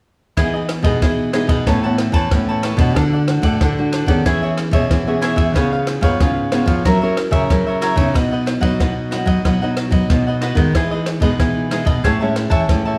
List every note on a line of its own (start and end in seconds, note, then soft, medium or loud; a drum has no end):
0.37 0.79 E3 medium
0.37 0.99 E3 soft
0.37 0.68 B3 soft
0.37 0.68 D#4 soft
0.37 0.52 E4 medium
0.37 0.53 G#4 medium
0.37 0.69 G#4 soft
0.37 0.53 B4 medium
0.37 0.52 D#5 medium
0.37 kick medium
0.37 cross-stick medium
0.37 ride soft
0.54 0.68 G#4 soft
0.54 0.69 B4 soft
0.54 0.69 D#5 soft
0.69 muted cavaquinho stroke soft
0.69 cross-stick medium
0.69 ride soft
0.83 0.98 B2 medium
0.83 1.29 B3 medium
0.83 1.29 D#4 medium
0.83 1.29 G#4 medium
0.83 1.01 G#4 medium
0.83 1.01 B4 medium
0.83 1.00 D#5 medium
0.83 kick medium
0.83 ride soft
1.02 1.64 B2 soft
1.02 1.43 E3 medium
1.02 1.32 E4 soft
1.02 1.32 G#4 soft
1.02 1.33 B4 soft
1.02 1.34 D#5 soft
1.02 kick medium
1.02 cross-stick medium
1.02 ride soft
1.33 1.64 B3 soft
1.33 1.64 D#4 medium
1.33 1.49 E4 soft
1.33 1.49 G#4 soft
1.33 1.65 G#4 medium
1.33 1.49 B4 soft
1.33 1.48 D#5 soft
1.33 cross-stick medium
1.33 ride soft
1.47 1.63 B2 medium
1.47 1.66 G#4 soft
1.47 1.65 B4 medium
1.47 1.65 D#5 medium
1.47 kick medium
1.47 ride soft
1.67 2.08 A2 medium
1.67 2.29 A2 soft
1.67 1.78 E3 medium
1.67 1.78 B3 medium
1.67 1.78 C#4 medium
1.67 1.82 A4 medium
1.67 1.82 B4 medium
1.67 1.82 C#5 medium
1.67 1.82 A5 medium
1.67 kick medium
1.67 cross-stick medium
1.67 ride soft
1.83 2.27 E3 medium
1.83 2.27 B3 medium
1.83 2.27 C#4 medium
1.83 1.98 B4 soft
1.83 1.98 C#5 soft
1.83 1.98 A5 soft
1.98 muted cavaquinho stroke soft
1.98 cross-stick medium
1.98 ride soft
2.12 2.27 E3 medium
2.12 2.46 B4 medium
2.12 2.47 C#5 soft
2.12 2.46 A5 medium
2.12 kick medium
2.12 ride soft
2.31 2.73 A2 medium
2.31 2.94 E3 soft
2.31 2.63 B3 soft
2.31 2.63 C#4 medium
2.31 kick medium
2.31 cross-stick medium
2.31 ride soft
2.49 2.64 B4 soft
2.49 2.63 C#5 soft
2.49 2.63 A5 soft
2.63 2.79 A4 medium
2.63 2.78 B4 medium
2.63 2.79 C#5 medium
2.63 2.77 A5 medium
2.63 cross-stick medium
2.63 ride soft
2.77 2.96 B2 medium
2.77 3.27 A3 medium
2.77 3.27 D4 soft
2.77 3.28 F#4 medium
2.77 2.95 B4 soft
2.77 2.95 C#5 soft
2.77 2.94 A5 soft
2.77 kick medium
2.77 ride soft
2.96 3.38 D3 medium
2.96 3.58 D3 soft
2.96 3.11 D4 medium
2.96 3.12 A4 medium
2.96 3.12 D5 medium
2.96 3.12 F#5 medium
2.96 kick medium
2.96 cross-stick medium
2.96 ride soft
3.13 3.28 A4 soft
3.13 3.28 D5 soft
3.13 3.28 F#5 soft
3.28 3.72 A3 medium
3.28 3.72 D4 soft
3.28 3.73 F#4 soft
3.28 muted cavaquinho stroke soft
3.28 cross-stick medium
3.28 ride soft
3.42 3.57 A2 medium
3.42 3.60 A4 soft
3.42 3.60 D5 medium
3.42 3.59 F#5 medium
3.42 kick medium
3.42 ride soft
3.61 4.23 A2 soft
3.61 4.03 D3 medium
3.61 3.91 D4 soft
3.61 3.92 A4 soft
3.61 3.93 D5 soft
3.61 3.94 F#5 soft
3.61 kick medium
3.61 cross-stick medium
3.61 ride soft
3.78 4.05 A3 soft
3.78 4.05 D4 medium
3.78 4.06 F#4 medium
3.93 4.08 D4 soft
3.93 4.09 A4 soft
3.93 4.08 D5 soft
3.93 4.07 F#5 soft
3.93 cross-stick medium
3.93 ride soft
4.06 4.22 D#3 medium
4.06 4.69 B3 medium
4.06 4.69 C#4 medium
4.06 4.69 G#4 medium
4.06 4.25 A4 soft
4.06 4.24 D5 soft
4.06 4.24 F#5 medium
4.06 kick medium
4.06 ride soft
4.25 4.68 E3 medium
4.25 4.88 E3 medium
4.25 4.41 E4 medium
4.25 4.41 G#4 medium
4.25 4.42 C#5 medium
4.25 4.41 E5 medium
4.25 kick medium
4.25 cross-stick medium
4.25 ride soft
4.42 4.57 G#4 soft
4.42 4.57 C#5 soft
4.42 4.57 E5 soft
4.57 muted cavaquinho stroke soft
4.57 cross-stick medium
4.57 ride soft
4.71 4.87 B2 medium
4.71 5.01 B3 medium
4.71 5.02 C#4 medium
4.71 5.02 G#4 medium
4.71 5.06 G#4 medium
4.71 5.06 C#5 medium
4.71 5.05 E5 medium
4.71 kick medium
4.71 ride soft
4.91 5.53 B2 medium
4.91 5.32 E3 medium
4.91 kick medium
4.91 cross-stick medium
4.91 ride soft
5.07 5.53 B3 medium
5.07 5.54 C#4 soft
5.07 5.54 G#4 medium
5.07 5.21 G#4 soft
5.07 5.22 C#5 soft
5.07 5.22 E5 soft
5.21 5.37 E4 medium
5.21 5.38 G#4 medium
5.21 5.37 C#5 medium
5.21 5.36 E5 medium
5.21 cross-stick medium
5.21 ride soft
5.36 5.56 E3 medium
5.36 5.55 G#4 soft
5.36 5.54 C#5 soft
5.36 5.53 E5 soft
5.36 kick medium
5.36 ride soft
5.55 6.17 C#3 soft
5.55 5.97 C#3 medium
5.55 5.99 B3 soft
5.55 5.70 F4 medium
5.55 5.99 F4 soft
5.55 6.00 G#4 medium
5.55 5.71 B4 medium
5.55 5.71 C#5 medium
5.55 5.71 F5 medium
5.55 kick medium
5.55 cross-stick medium
5.55 ride soft
5.73 5.87 B4 soft
5.73 5.87 C#5 soft
5.73 5.87 F5 soft
5.87 muted cavaquinho stroke soft
5.87 cross-stick medium
5.87 ride soft
6.01 6.16 G#2 medium
6.01 6.47 B3 medium
6.01 6.48 F4 medium
6.01 6.48 G#4 medium
6.01 6.20 B4 medium
6.01 6.19 C#5 medium
6.01 6.18 F5 medium
6.01 kick medium
6.01 ride soft
6.20 6.82 G#2 soft
6.20 6.62 C#3 medium
6.20 6.51 F4 soft
6.20 6.52 B4 soft
6.20 6.52 C#5 soft
6.20 6.53 F5 soft
6.20 kick medium
6.20 cross-stick medium
6.20 ride soft
6.52 6.83 B3 medium
6.52 6.67 F4 soft
6.52 6.83 F4 medium
6.52 6.83 G#4 medium
6.52 6.68 B4 soft
6.52 6.67 C#5 soft
6.52 6.66 F5 soft
6.52 cross-stick medium
6.52 ride soft
6.66 6.81 F3 medium
6.66 6.84 C#5 soft
6.66 6.83 F5 medium
6.66 kick medium
6.66 ride soft
6.70 6.85 B4 soft
6.85 7.47 F#3 medium
6.85 7.27 F#3 medium
6.85 6.97 C#4 medium
6.85 6.97 E4 soft
6.85 7.00 F#4 medium
6.85 7.01 A#4 medium
6.85 6.97 A#4 medium
6.85 7.01 C#5 medium
6.85 7.01 E5 medium
6.85 kick medium
6.85 cross-stick medium
6.85 ride soft
7.02 7.46 C#4 medium
7.02 7.46 E4 medium
7.02 7.46 A#4 medium
7.02 7.16 A#4 soft
7.02 7.17 C#5 soft
7.02 7.17 E5 soft
7.17 muted cavaquinho stroke soft
7.17 cross-stick medium
7.17 ride soft
7.31 7.46 C#3 medium
7.31 7.65 A#4 soft
7.31 7.65 C#5 medium
7.31 7.64 E5 medium
7.31 kick medium
7.31 ride soft
7.50 8.12 C#3 medium
7.50 7.92 F#3 medium
7.50 7.94 C#4 medium
7.50 7.94 E4 soft
7.50 7.95 A#4 medium
7.50 kick medium
7.50 cross-stick medium
7.50 ride soft
7.67 7.81 A#4 soft
7.67 7.82 C#5 soft
7.67 7.82 E5 soft
7.81 7.97 F#4 medium
7.81 7.98 A#4 medium
7.81 7.97 C#5 medium
7.81 7.96 E5 medium
7.81 cross-stick medium
7.81 ride medium
7.96 8.15 C#3 medium
7.96 8.58 F#3 medium
7.96 8.58 B3 medium
7.96 8.59 D#4 medium
7.96 8.14 A#4 soft
7.96 8.14 C#5 soft
7.96 8.13 E5 soft
7.96 kick medium
7.96 ride soft
8.14 8.57 B2 medium
8.14 8.77 B2 soft
8.14 8.30 F#4 medium
8.14 8.30 B4 medium
8.14 8.30 D#5 medium
8.14 8.30 F#5 medium
8.14 kick medium
8.14 cross-stick medium
8.14 ride soft
8.31 8.45 B4 soft
8.31 8.46 D#5 soft
8.31 8.46 F#5 soft
8.46 muted cavaquinho stroke soft
8.46 cross-stick medium
8.46 ride soft
8.61 8.76 F#3 medium
8.61 8.79 F#3 medium
8.61 9.07 B3 medium
8.61 9.07 D#4 medium
8.61 8.79 B4 medium
8.61 8.78 D#5 medium
8.61 8.78 F#5 medium
8.61 kick medium
8.61 ride soft
8.79 9.22 B2 medium
8.79 9.11 F#3 soft
8.79 9.10 F#4 soft
8.79 9.11 B4 soft
8.79 9.11 D#5 soft
8.79 9.12 F#5 soft
8.79 kick medium
8.79 cross-stick medium
8.79 ride soft
9.11 9.56 F#3 soft
9.11 9.56 B3 soft
9.11 9.56 D#4 soft
9.11 9.27 F#4 soft
9.11 9.27 B4 soft
9.11 9.27 D#5 soft
9.11 9.26 F#5 soft
9.11 cross-stick medium
9.11 ride soft
9.26 9.41 F#3 medium
9.26 9.44 B4 soft
9.26 9.43 D#5 medium
9.26 9.43 F#5 medium
9.26 kick medium
9.26 ride soft
9.45 10.07 B2 medium
9.45 9.86 F#3 medium
9.45 9.60 F#4 medium
9.45 9.60 B4 medium
9.45 9.61 D#5 medium
9.45 9.61 F#5 medium
9.45 kick medium
9.45 cross-stick medium
9.45 ride soft
9.62 10.05 F#3 medium
9.62 10.06 B3 soft
9.62 10.06 D#4 medium
9.62 9.76 B4 soft
9.62 9.76 D#5 soft
9.62 9.77 F#5 soft
9.77 muted cavaquinho stroke soft
9.77 cross-stick medium
9.77 ride soft
9.90 10.06 F#3 medium
9.90 10.25 B4 medium
9.90 10.25 D#5 medium
9.90 10.24 F#5 medium
9.90 kick medium
9.90 ride soft
10.10 10.51 B2 medium
10.10 10.41 F#3 soft
10.10 10.41 B3 soft
10.10 10.41 D#4 medium
10.10 kick medium
10.10 cross-stick medium
10.10 ride soft
10.27 10.41 B4 soft
10.27 10.42 D#5 soft
10.27 10.41 F#5 soft
10.41 10.57 F#4 medium
10.41 10.57 B4 medium
10.41 10.57 D#5 medium
10.41 10.55 F#5 medium
10.41 cross-stick medium
10.41 ride soft
10.55 10.75 D#3 medium
10.55 11.18 G#3 medium
10.55 11.18 B3 soft
10.55 11.18 D#4 medium
10.55 10.73 D#5 soft
10.55 10.73 F#5 soft
10.55 kick medium
10.55 ride soft
10.59 10.74 B4 soft
10.75 11.16 E3 medium
10.75 11.37 E3 medium
10.75 10.90 E4 medium
10.75 10.90 G#4 medium
10.75 10.91 B4 medium
10.75 10.90 D#5 medium
10.75 kick medium
10.75 cross-stick medium
10.75 ride soft
10.91 11.06 G#4 soft
10.91 11.06 B4 soft
10.91 11.06 D#5 soft
11.06 muted cavaquinho stroke soft
11.06 cross-stick medium
11.06 ride soft
11.20 11.35 B2 medium
11.20 11.66 G#3 medium
11.20 11.66 B3 medium
11.20 11.67 D#4 medium
11.20 11.38 B4 medium
11.20 11.38 D#5 medium
11.20 kick medium
11.20 ride soft
11.24 11.39 G#4 medium
11.39 12.01 B2 soft
11.39 11.81 E3 medium
11.39 11.69 E4 soft
11.39 11.70 G#4 soft
11.39 11.71 B4 soft
11.39 11.72 D#5 soft
11.39 kick medium
11.39 cross-stick medium
11.39 ride soft
11.71 11.93 G#3 soft
11.71 11.93 B3 medium
11.71 11.93 D#4 medium
11.71 11.86 E4 soft
11.71 11.87 G#4 soft
11.71 11.86 B4 soft
11.71 11.85 D#5 soft
11.71 cross-stick medium
11.71 ride soft
11.85 12.00 B2 medium
11.85 12.03 G#4 soft
11.85 12.03 B4 medium
11.85 12.02 D#5 medium
11.85 kick medium
11.85 ride soft
12.04 12.66 A2 medium
12.04 12.46 A2 medium
12.04 12.16 G#3 medium
12.04 12.16 C#4 medium
12.04 12.16 E4 medium
12.04 12.19 G#4 medium
12.04 12.20 C#5 medium
12.04 12.20 E5 medium
12.04 12.19 A5 medium
12.04 kick medium
12.04 cross-stick medium
12.04 ride soft
12.20 12.65 G#3 medium
12.20 12.65 C#4 medium
12.20 12.65 E4 medium
12.20 12.35 C#5 soft
12.20 12.36 E5 soft
12.20 12.36 A5 soft
12.36 muted cavaquinho stroke soft
12.36 cross-stick medium
12.36 ride soft
12.50 12.65 E3 medium
12.50 12.84 C#5 soft
12.50 12.84 E5 medium
12.50 12.83 A5 medium
12.50 kick medium
12.50 ride soft
12.69 12.98 A2 medium
12.69 12.98 E3 soft
12.69 12.98 G#3 soft
12.69 12.98 C#4 soft
12.69 12.98 E4 medium
12.69 kick medium
12.69 cross-stick medium
12.69 ride soft
12.85 12.98 C#5 soft
12.85 12.98 E5 soft
12.85 12.98 A5 soft